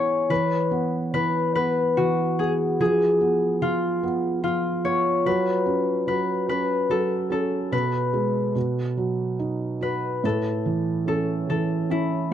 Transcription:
Already playing: E3 B3 E4 G#4 C#5 G#5
0.30 E3 B4
0.71 B3
1.14 E3 B4
1.55 B3 B4
1.97 E3 F#4
2.39 B3 G#4
2.80 F3 G#4
3.21 B3
3.62 F3 F4
4.03 B3
4.43 F3 F4
4.84 B3 C#5
5.26 F#3 B4
5.66 C#4
6.07 F#3 B4
6.49 C#4 B4
6.90 F#3 A4
7.30 C#4 A4
7.72 B2 B4
8.13 G#3
8.55 B2
8.97 F#3
9.39 D#4
9.81 F#4 B4
10.24 A2 A4
10.66 E3
11.07 C#4 A4
11.49 E3 A4
11.90 C#4 E4

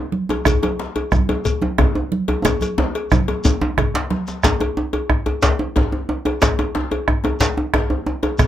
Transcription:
0.12 high conga
0.29 cowbell, djembe slap, djembe tone
0.45 bombo rim, bombo low, cowbell, djembe slap, djembe bass, low conga, shekere
0.62 bombo rim, cowbell, high conga, djembe tone
0.79 djembe slap
0.96 cowbell, djembe slap, djembe tone
1.12 bombo rim, bombo low, high conga, low conga, djembe bass, shekere
1.29 cowbell, djembe slap, djembe tone
1.45 cowbell, djembe slap, djembe bass, shekere
1.62 bombo rim, high conga, djembe tone
1.78 bombo rim, bombo low, cowbell, djembe slap, djembe tone, low conga, djembe bass
1.95 bombo rim, djembe tone
2.12 high conga
2.28 cowbell, djembe slap, djembe tone
2.45 bombo rim, bombo low, cowbell, high conga, djembe tone, low conga, djembe bass, shekere
2.61 bombo rim, cowbell, djembe slap, high conga, shekere
2.78 djembe slap, djembe tone
2.95 bombo rim, cowbell
3.11 bombo rim, bombo low, djembe tone, high conga, low conga, shekere
3.28 cowbell, djembe slap, djembe tone
3.44 bombo rim, cowbell, djembe tone, djembe bass, shekere
3.61 djembe tone, high conga, djembe bass
3.77 bombo rim, bombo low, cowbell, djembe bass, low conga
3.94 bombo rim, djembe slap, djembe bass
4.10 djembe slap, high conga
4.27 djembe slap, shekere
4.43 bombo rim, bombo low, cowbell, djembe slap, djembe bass, shekere
4.60 bombo rim, cowbell, djembe tone
4.77 djembe tone
4.93 cowbell, djembe tone
5.10 bombo rim, bombo low, djembe tone
5.26 cowbell, djembe tone
5.43 bombo rim, cowbell, djembe slap, djembe bass, shekere
5.59 djembe tone
5.76 bombo low, cowbell, djembe slap, djembe tone
5.92 djembe tone
6.09 bombo rim, djembe slap, djembe tone
6.25 bombo rim, cowbell, djembe slap, djembe tone
6.42 bombo rim, bombo low, cowbell, djembe slap, djembe bass, shekere
6.59 bombo rim, cowbell, djembe tone
6.75 djembe slap, djembe tone
6.91 cowbell, djembe tone
7.08 bombo rim, bombo low, djembe tone
7.24 cowbell, djembe slap, djembe tone
7.40 bombo rim, cowbell, djembe slap, djembe bass, shekere
7.57 djembe tone
7.74 bombo rim, bombo low, cowbell, djembe slap, djembe tone
7.90 djembe tone
8.06 bombo rim, djembe tone
8.23 bombo rim, cowbell, djembe slap, djembe tone
8.39 bombo rim, bombo low, cowbell, djembe bass, low conga, shekere

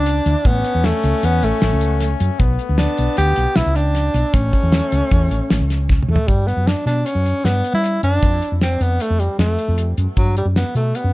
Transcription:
Already playing: C#2 D4
0.06 closed hi-hat, shaker
0.26 D2, closed hi-hat
0.45 A1 B3 C#4, kick, closed hi-hat, shaker
0.64 closed hi-hat
0.75 E2
0.84 A3, snare, closed hi-hat
1.04 C#2, closed hi-hat
1.23 E2 B3, closed hi-hat, shaker
1.42 A1 A3, closed hi-hat
1.62 A1, snare, closed hi-hat
1.72 C#2
1.81 closed hi-hat, shaker
2.00 snare, closed hi-hat, shaker
2.20 F#2, closed hi-hat
2.39 B1 B3, kick, closed hi-hat, shaker
2.59 closed hi-hat
2.69 D2
2.78 D4, snare, closed hi-hat
2.97 B1, closed hi-hat
3.17 D2 G4, closed hi-hat, shaker
3.36 B1, closed hi-hat
3.56 B1 E4, snare, closed hi-hat
3.66 C#2
3.76 D4, closed hi-hat, shaker
3.95 snare, closed hi-hat, shaker
4.14 B1, closed hi-hat
4.34 A1 A3 C#4, kick, closed hi-hat, shaker
4.53 kick, closed hi-hat, shaker
4.63 E2
4.72 snare, closed hi-hat
4.92 C#2, closed hi-hat, shaker
5.11 E2, kick, closed hi-hat, shaker
5.31 A1, closed hi-hat, shaker
5.50 A1, snare, closed hi-hat
5.60 C#2
5.70 snare, closed hi-hat, shaker
5.90 kick, snare
6.03 mid tom
6.08 E2 A3, shaker
6.16 floor tom
6.28 G2 G3, kick, closed hi-hat
6.47 B3, closed hi-hat
6.57 F#2
6.67 D4, snare, closed hi-hat
6.86 B2 D4, snare, closed hi-hat
7.06 C#4, closed hi-hat
7.15 F#2
7.26 closed hi-hat
7.45 G2 B3, snare, closed hi-hat
7.65 closed hi-hat
7.74 G3 E4
7.84 closed hi-hat
8.03 F#2 D4, closed hi-hat
8.23 F2, kick, closed hi-hat
8.42 closed hi-hat
8.52 F2
8.61 C4, snare, closed hi-hat
8.81 F2 B3, closed hi-hat
9.00 A3, closed hi-hat
9.10 F2
9.20 G3, closed hi-hat
9.39 F2 A3, snare, closed hi-hat
9.59 closed hi-hat
9.68 F2
9.78 closed hi-hat
9.97 F#2, closed hi-hat
10.17 G2 F#3, kick, closed hi-hat
10.37 G3, closed hi-hat
10.45 F#2
10.56 B3, snare, closed hi-hat
10.75 B2 A3, closed hi-hat
10.95 B3, closed hi-hat
11.04 F#2

